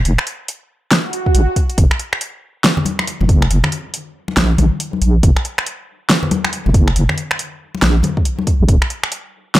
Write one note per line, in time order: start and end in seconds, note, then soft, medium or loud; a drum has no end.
0.05 0.17 F1 loud
0.05 closed hi-hat medium
0.18 finger snap medium
0.27 closed hi-hat medium
0.48 closed hi-hat medium
0.91 snare loud
0.91 closed hi-hat medium
0.91 swell medium
1.13 closed hi-hat medium
1.26 kick medium
1.35 1.47 A#1 medium
1.35 closed hi-hat medium
1.56 kick medium
1.56 closed hi-hat medium
1.70 closed hi-hat soft
1.78 1.90 F#1 loud
1.78 kick loud
1.78 closed hi-hat medium
1.91 finger snap medium
1.99 closed hi-hat medium
2.13 finger snap medium
2.21 closed hi-hat medium
2.64 snare loud
2.64 closed hi-hat medium
2.77 low conga medium
2.85 closed hi-hat medium
2.85 high conga medium
2.99 finger snap medium
2.99 muted conga medium
3.07 closed hi-hat medium
3.21 3.28 F#1 medium
3.21 muted conga soft
3.21 high conga medium
3.29 3.49 F#1 loud
3.29 kick loud
3.29 closed hi-hat medium
3.42 finger snap medium
3.51 3.63 F#1 loud
3.51 closed hi-hat medium
3.64 finger snap medium
3.64 low conga medium
3.72 closed hi-hat medium
3.94 closed hi-hat medium
4.28 muted conga medium
4.37 4.57 A#1 medium
4.37 snare loud
4.37 closed hi-hat medium
4.58 4.71 A#1 medium
4.58 closed hi-hat medium
4.58 high conga loud
4.58 low conga medium
4.80 closed hi-hat medium
4.93 high conga medium
5.02 5.22 A#1 medium
5.02 closed hi-hat medium
5.23 5.35 F#1 loud
5.23 kick loud
5.23 closed hi-hat medium
5.37 finger snap medium
5.45 closed hi-hat medium
5.58 finger snap medium
5.66 closed hi-hat medium
6.10 snare loud
6.10 closed hi-hat medium
6.23 low conga medium
6.31 closed hi-hat medium
6.31 high conga loud
6.45 finger snap medium
6.45 muted conga medium
6.53 closed hi-hat medium
6.66 6.74 F#1 medium
6.66 muted conga soft
6.66 high conga medium
6.74 6.95 F#1 loud
6.74 kick loud
6.74 closed hi-hat medium
6.88 finger snap medium
6.96 7.08 F#1 loud
6.96 closed hi-hat medium
7.09 finger snap soft
7.09 low conga medium
7.18 closed hi-hat medium
7.31 finger snap medium
7.39 closed hi-hat medium
7.75 muted conga medium
7.82 8.03 A#1 medium
7.82 snare loud
7.82 closed hi-hat medium
8.03 closed hi-hat medium
8.03 high conga medium
8.03 low conga medium
8.17 kick medium
8.25 closed hi-hat medium
8.39 high conga medium
8.47 kick medium
8.47 closed hi-hat medium
8.60 8.68 A#1 medium
8.69 8.81 D#1 loud
8.69 kick loud
8.69 closed hi-hat medium
8.82 finger snap medium
8.90 closed hi-hat medium
9.03 finger snap medium
9.12 closed hi-hat medium
9.55 snare loud
9.55 closed hi-hat medium